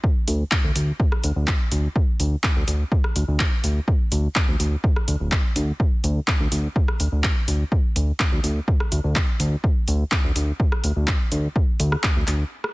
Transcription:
0.04 kick
0.28 D2, open hi-hat
0.51 kick, clap
0.64 D2
0.76 D2, open hi-hat
1.00 kick
1.12 cross-stick
1.24 D2, open hi-hat
1.36 D2
1.47 kick, clap
1.72 D2, open hi-hat
1.96 kick
2.20 D2, open hi-hat
2.44 kick, clap
2.56 D2
2.68 D2, open hi-hat
2.92 kick
3.04 cross-stick
3.16 D2, open hi-hat
3.28 D2
3.40 kick, clap
3.64 D2, open hi-hat
3.88 kick
4.12 D2, open hi-hat
4.36 kick, clap
4.48 D2
4.60 D2, open hi-hat
4.84 kick
4.96 cross-stick
5.08 D2, open hi-hat
5.20 D1
5.32 kick, clap
5.56 D2, open hi-hat
5.80 kick
6.04 D2, open hi-hat
6.28 kick, clap
6.40 D2
6.52 D2, open hi-hat
6.76 kick
6.88 cross-stick
7.00 D2, open hi-hat
7.12 D2
7.24 kick, clap
7.48 D2, open hi-hat
7.72 kick
7.96 D2, open hi-hat
8.20 kick, clap
8.32 D2
8.44 D2, open hi-hat
8.68 kick
8.80 cross-stick
8.92 D2, open hi-hat
9.04 D2
9.16 kick, clap
9.40 D2, open hi-hat
9.64 kick
9.88 D2, open hi-hat
10.12 kick, clap
10.24 D2
10.36 D2, open hi-hat
10.60 kick
10.72 cross-stick
10.84 D2, open hi-hat
10.96 D2
11.07 kick, clap
11.32 D2, open hi-hat
11.56 kick
11.80 D2, open hi-hat
11.92 cross-stick
12.03 kick, clap
12.16 D2
12.27 D2, clap, open hi-hat
12.64 cross-stick

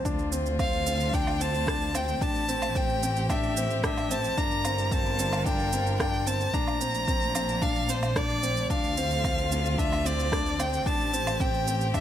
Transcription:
0.05 D2 D3 A3 C4 D4 F4, kick, shaker
0.19 shaker
0.32 C4, shaker
0.46 shaker
0.59 C4 F5, kick, low woodblock, shaker
0.73 shaker
0.86 C4, shaker
1.00 shaker
1.13 D4 G5, kick, shaker
1.27 low woodblock, shaker
1.40 C4 A5, shaker
1.55 shaker
1.67 D4, kick, cross-stick, shaker
1.81 shaker
1.94 C4 G5, low woodblock, shaker
2.08 shaker
2.21 A1 D4 G4 A5, kick, shaker
2.36 shaker
2.48 C4, shaker
2.62 low woodblock, shaker
2.75 C4 G5, kick, shaker
2.89 shaker
3.03 C4, shaker
3.16 shaker
3.29 D4 E5, kick, low woodblock, shaker
3.43 shaker
3.57 C4, shaker
3.70 shaker
3.84 D4 E5, kick, cross-stick, shaker
3.97 low woodblock, shaker
4.11 C4 A5, shaker
4.24 shaker
4.37 G1 G3 D4 F4 A#4 A#5, kick, shaker
4.51 shaker
4.65 C4, low woodblock, shaker
4.78 shaker
4.92 C4 A5, kick, shaker
5.06 shaker
5.19 C4, shaker
5.33 low woodblock, shaker
5.46 D4 G5, kick, shaker
5.59 shaker
5.73 C4, shaker
5.87 shaker
6.00 D4 G5, kick, cross-stick, low woodblock, shaker
6.14 shaker
6.27 C4 A5, shaker
6.40 shaker
6.54 A#1 A3 A#3 D4 A#5, kick, shaker
6.68 low woodblock, shaker
6.81 C4, shaker
6.95 shaker
7.08 C4, kick, shaker
7.22 shaker
7.35 C4, low woodblock, shaker
7.49 shaker
7.62 D4 F5, kick, shaker
7.75 shaker
7.89 C4 C5, shaker
8.03 low woodblock, shaker
8.16 D4 D5, kick, cross-stick, shaker
8.30 shaker
8.43 C4, shaker
8.57 shaker
8.69 D2 D3 C4 D4 F4 F5, kick, shaker
8.84 shaker
8.97 C4, shaker
9.11 shaker
9.24 C4, kick, low woodblock, shaker
9.38 shaker
9.51 C4, shaker
9.65 shaker
9.78 D4 E5, kick, shaker
9.93 low woodblock, shaker
10.05 C4 D5, shaker
10.19 shaker
10.32 D4, kick, cross-stick, shaker
10.46 shaker
10.59 C4 G5, low woodblock, shaker
10.73 shaker
10.86 A1 D4 G4 A5, kick, shaker
11.00 shaker
11.13 C4, shaker
11.27 low woodblock, shaker
11.40 C4 G5, kick, shaker
11.54 shaker
11.67 C4, shaker
11.81 shaker
11.94 D4 E5, kick, low woodblock, shaker

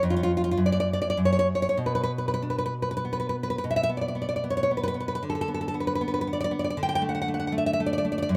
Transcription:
0.03 F2
0.10 F4
0.17 F4
0.23 F4
0.37 F4
0.44 F4
0.51 F4
0.57 F#2
0.66 D5
0.72 D5
0.80 D5
0.93 D5
1.02 D5
1.10 D5
1.17 F#2
1.25 C#5
1.33 C#5
1.39 C#5
1.55 C#5
1.62 C#5
1.69 C#5
1.77 B2
1.86 B4
1.95 B4
2.03 B4
2.18 B4
2.28 B4
2.34 B4
2.42 D4
2.50 B4
2.58 B4
2.66 B4
2.82 B4
2.91 B4
2.97 B4
3.05 B3
3.13 B4
3.20 B4
3.29 B4
3.43 B4
3.50 B4
3.58 B4
3.64 B2
3.71 E5
3.76 E5
3.83 E5
3.89 B3
3.97 D5
4.01 D5
4.08 D5
4.15 B3
4.22 D5
4.29 D5
4.36 D5
4.44 B3
4.50 C#5
4.57 C#5
4.63 C#5
4.71 B3
4.77 B4
4.83 B4
4.88 B4
4.94 B3
5.00 B4
5.08 B4
5.15 B4
5.23 D3
5.30 A4
5.35 A4
5.41 A4
5.48 B3
5.54 A4
5.61 A4
5.68 A4
5.74 B3
5.80 B4
5.87 B4
5.95 B4
6.01 B3
6.08 B4
6.14 B4
6.21 B4
6.27 B3
6.33 D5
6.41 D5
6.51 B3
6.59 D5
6.64 D5
6.70 D5
6.77 D3
6.83 G5
6.89 G5
6.95 G5
7.02 A3
7.09 F#5
7.15 F#5
7.22 F#5
7.28 A3
7.34 F#5
7.40 F#5
7.47 F#5
7.52 A3
7.58 E5
7.66 E5
7.73 E5
7.80 A3
7.86 D5
7.93 D5
7.98 D5
8.05 A3
8.12 D5
8.18 D5
8.22 D5
8.29 F#2

